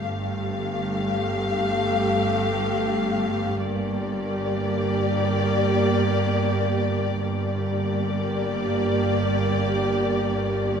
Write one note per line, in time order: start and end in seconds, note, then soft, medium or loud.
0.05 3.58 G1 soft
0.05 3.58 G2 soft
0.05 3.59 A3 soft
0.05 3.58 G4 soft
0.05 3.59 F5 medium
3.61 7.19 G1 medium
3.61 7.19 G2 medium
3.61 7.20 A#3 medium
3.61 7.20 G4 medium
3.61 7.19 D5 medium
7.22 10.80 G1 soft
7.22 10.80 G2 soft
7.22 10.80 A#3 soft
7.22 10.80 G4 soft
7.22 10.80 D5 medium